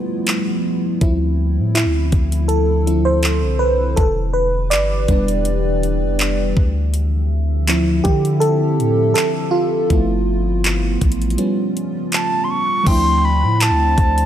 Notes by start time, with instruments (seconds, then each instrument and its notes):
Already playing: fm electric piano F3 A3 B3 E4, ambient pad F3 G3 B3
0.27 clap, closed hi-hat
1.01 808-style bass D2, ambient pad D3 C4 E4, fm electric piano F3 C4 E4, kick, closed hi-hat
1.59 808-style bass A2
1.75 fm electric piano E4, clap, closed hi-hat
1.86 808-style bass D2
2.12 808-style bass D2, kick, closed hi-hat
2.32 closed hi-hat
2.48 fm electric piano A4, closed hi-hat
2.86 fm electric piano F3 C4 E4, closed hi-hat
3.05 fm electric piano C5
3.23 clap, closed hi-hat
3.43 808-style bass C2
3.59 fm electric piano B4
3.96 808-style bass E1, ambient pad E3 D4 G4, fm electric piano A4, kick, closed hi-hat
4.33 fm electric piano B4
4.70 808-style bass G1, fm electric piano D5, clap, closed hi-hat
5.08 808-style bass E1, fm electric piano G3 B3 D4, kick, closed hi-hat
5.28 closed hi-hat
5.45 closed hi-hat
5.83 closed hi-hat
6.03 808-style bass F1
6.19 clap, closed hi-hat
6.56 808-style bass D2, ambient pad D3 F3 C4 E5, kick
6.94 closed hi-hat
7.68 fm electric piano F3 C4 E4, clap, closed hi-hat
8.04 808-style bass D3, fm electric piano G4, kick, closed hi-hat
8.25 closed hi-hat
8.40 fm electric piano A4, closed hi-hat
8.79 808-style bass A2, closed hi-hat
9.14 fm electric piano A4, clap, closed hi-hat
9.51 fm electric piano F4
9.90 808-style bass G1, fm electric piano F3 A3 B3 E4, ambient pad F3 G3 B3, kick, closed hi-hat
10.65 clap, closed hi-hat
11.01 808-style bass A1, kick, closed hi-hat
11.12 closed hi-hat
11.22 closed hi-hat
11.30 closed hi-hat
11.38 ambient pad C#3 A3, fm electric piano G3 B3 C#4, closed hi-hat
11.77 closed hi-hat
12.12 flute A5, clap, closed hi-hat
12.44 flute C6
12.50 flute C#6
12.83 808-style bass D2, fm electric piano F3 A3 C4, ambient pad C5 D5 E5, synth bell G5, kick, closed hi-hat, crash
12.87 fm electric piano D4 E4, flute C6
13.25 flute B5
13.43 808-style bass A2
13.61 flute A5, clap, closed hi-hat
13.70 808-style bass D2
13.98 808-style bass D2, kick, closed hi-hat
14.18 closed hi-hat